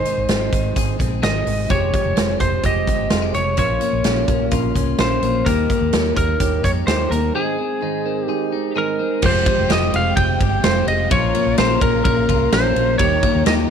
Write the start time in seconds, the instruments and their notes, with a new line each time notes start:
Already playing: clean electric guitar D#3 G#4, lead electric guitar C5
0.05 steel-string acoustic guitar G#3 C4 D#4, closed hi-hat
0.18 fingered electric bass G#1
0.29 fingered electric bass G#1, steel-string acoustic guitar G#2 D#3 G#3 C4 D#4, snare, closed hi-hat
0.53 fingered electric bass G#1, clean electric guitar G#3, kick, closed hi-hat
0.75 fingered electric bass G#1, steel-string acoustic guitar D#3 G#3 C4 D#4, clean electric guitar G#4, kick, closed hi-hat
0.99 fingered electric bass A#1, steel-string acoustic guitar G#3 C4 D#4, kick, closed hi-hat
1.22 fingered electric bass G#1, steel-string acoustic guitar G#2 D#3 G#3 C4 D#4, clean electric guitar G#4, lead electric guitar D#5, snare, closed hi-hat
1.46 fingered electric bass G#1, steel-string acoustic guitar G#3 C4 D#4, open hi-hat
1.69 fingered electric bass F1, steel-string acoustic guitar F3 G#3 C4 G4, reed electric piano G#3 F4 G4, lead electric guitar C#5, kick, closed hi-hat
1.93 steel-string acoustic guitar G#3 C4 G4, kick, closed hi-hat
2.05 fingered electric bass F1
2.16 fingered electric bass F1, steel-string acoustic guitar F3 G#3 C4 G4, reed electric piano G#3 F4 G4, snare, closed hi-hat
2.40 fingered electric bass F1, reed electric piano G#3 F4 G4, clean electric guitar G#3, lead electric guitar C5, kick, closed hi-hat
2.63 fingered electric bass F1, steel-string acoustic guitar F3 G#3 C4 G4, reed electric piano G#3 F4 G4, lead electric guitar D#5, kick, closed hi-hat
2.87 fingered electric bass G1, steel-string acoustic guitar G#3 C4 G4, kick, closed hi-hat
3.10 fingered electric bass F1, steel-string acoustic guitar F3 G#3 C4 G4, reed electric piano G#3 F4 G4, clean electric guitar F4, snare, closed hi-hat
3.22 clean electric guitar G4
3.34 fingered electric bass F1, steel-string acoustic guitar G#3 C4 G4, lead electric guitar C#5, closed hi-hat
3.57 fingered electric bass A#1, steel-string acoustic guitar A#2 F3 A#3 C#4 F4, reed electric piano C#4 F4 A#4, lead electric guitar C#5, kick, closed hi-hat
3.80 steel-string acoustic guitar A#3 C#4 F4, closed hi-hat
3.93 fingered electric bass A#1
4.04 fingered electric bass A#1, steel-string acoustic guitar A#2 F3 A#3 C#4 F4, reed electric piano C#4 F4 G4, snare, closed hi-hat
4.28 fingered electric bass A#1, clean electric guitar A#3, reed electric piano C#4 F4 A#4, kick, closed hi-hat
4.51 fingered electric bass A#1, steel-string acoustic guitar F3 A#3 C#4 F4, reed electric piano C#4 F4 A#4, kick, closed hi-hat
4.74 fingered electric bass C2, steel-string acoustic guitar A#3 C#4 F4, kick, closed hi-hat
4.98 fingered electric bass A#1, steel-string acoustic guitar A#2 F3 A#3 C#4 F4, reed electric piano C#4 F4 A#4, lead electric guitar C5, snare, closed hi-hat
5.22 fingered electric bass A#1, clean electric guitar A#3, steel-string acoustic guitar C#4 F4, closed hi-hat
5.46 fingered electric bass D#2, steel-string acoustic guitar D#3 G3 A#3 D#4, reed electric piano D#4 G4 A#4, clean electric guitar G4, lead electric guitar A#4, kick, closed hi-hat
5.68 steel-string acoustic guitar G3 A#3 D#4, kick, closed hi-hat
5.81 fingered electric bass D#2
5.92 fingered electric bass D#2, steel-string acoustic guitar D#3 G3 A#3 D#4, reed electric piano D#4 G4 C#5, snare, closed hi-hat
6.15 fingered electric bass D#2, clean electric guitar A#3, reed electric piano D#4 G4, lead electric guitar A#4, kick, closed hi-hat
6.40 fingered electric bass D#2, steel-string acoustic guitar D#3 G3 A#3 D#4, reed electric piano D#4 G4 C#5, clean electric guitar G4, kick, closed hi-hat
6.63 fingered electric bass F2, steel-string acoustic guitar G3 A#3 D#4, lead electric guitar C#5, kick, closed hi-hat
6.86 fingered electric bass D#2, steel-string acoustic guitar D#3 G3 A#3 D#4, reed electric piano D#4 G4 A#4, clean electric guitar G4, lead electric guitar C5, snare, closed hi-hat
7.10 fingered electric bass D#2, steel-string acoustic guitar G3 A#3 D#4, lead electric guitar A#4, closed hi-hat
7.34 steel-string acoustic guitar G#2 D#3 G#3 C4 D#4, reed electric piano D#4 G#4 C5, lead electric guitar G#4, clean electric guitar G#4
7.57 steel-string acoustic guitar C4 D#4
7.81 steel-string acoustic guitar G#2 D#3 G#3 C4 D#4, reed electric piano D#4 G#4 C5
8.06 clean electric guitar C4, reed electric piano D#4 G#4 A#4
8.24 steel-string acoustic guitar D#3, reed electric piano D#4 G#4 C5, lead electric guitar G4
8.29 steel-string acoustic guitar G#3 C4 D#4, clean electric guitar G#4
8.51 steel-string acoustic guitar G#3 C4 D#4
8.75 steel-string acoustic guitar G#2 D#3 G#3 C4 D#4, reed electric piano D#4 G#4 D#5, clean electric guitar G#4, lead electric guitar A#4
8.99 steel-string acoustic guitar G#3 C4 D#4
9.22 fingered electric bass F1, steel-string acoustic guitar F3 G#3 C4 G4, reed electric piano G#3 F4 G4, lead electric guitar C5, string section F5 G5, kick, crash
9.46 steel-string acoustic guitar G#3 C4 G4, kick, ride
9.58 fingered electric bass F1
9.70 fingered electric bass F1, steel-string acoustic guitar F3 G#3 C4 G4, reed electric piano G#3 F4 G4, lead electric guitar D#5, snare, ride
9.93 fingered electric bass F1, reed electric piano G#3 F4 G#4, clean electric guitar C4, lead electric guitar F5, ride
10.16 fingered electric bass F1, reed electric piano G#3 F4 G4, clean electric guitar G#3, lead electric guitar G5, kick, ride
10.40 fingered electric bass G1, steel-string acoustic guitar G#3 C4 G4, kick, ride
10.63 fingered electric bass F1, steel-string acoustic guitar F3 G#3 C4 G4, reed electric piano G#3 F4 G4, lead electric guitar C5, snare, ride
10.86 fingered electric bass F1, steel-string acoustic guitar G#3 C4 G4, lead electric guitar D#5, ride
11.10 fingered electric bass A#1, steel-string acoustic guitar A#2 F3 A#3 C#4 F4, reed electric piano A#3 C#4 F4, string section A#4 A#5, lead electric guitar C#5, kick, ride
11.34 steel-string acoustic guitar A#3 C#4 F4, ride
11.46 fingered electric bass A#1
11.58 fingered electric bass A#1, steel-string acoustic guitar F3 A#3 C#4 F4, reed electric piano A#3 C#4 G#4, lead electric guitar C5, snare, ride
11.81 fingered electric bass A#1, reed electric piano A#3 C#4 F4, clean electric guitar C#4, lead electric guitar A#4, kick, ride
12.04 fingered electric bass A#1, reed electric piano A#3 C#4 F4, clean electric guitar A#3, lead electric guitar A#4, kick, ride
12.29 fingered electric bass C2, steel-string acoustic guitar A#3 C#4 F4, kick, ride
12.51 fingered electric bass A#1, steel-string acoustic guitar F3 A#3 C#4 F4, reed electric piano A#3 C#4 G4, lead electric guitar C5, snare, ride
12.74 fingered electric bass A#1, steel-string acoustic guitar A#3 C#4 F4, ride
12.98 fingered electric bass D#2, steel-string acoustic guitar D#3 G3 A#3 D#4, reed electric piano A#3 D#4 G4, string section G4 D#5 A#5, clean electric guitar G4, lead electric guitar C#5, kick, ride
13.21 steel-string acoustic guitar G3 A#3 D#4, kick, ride
13.35 fingered electric bass D#2
13.46 fingered electric bass D#2, steel-string acoustic guitar D#3 G3 A#3 D#4, reed electric piano A#3 D#4 G4, clean electric guitar G4, lead electric guitar D#5, snare, ride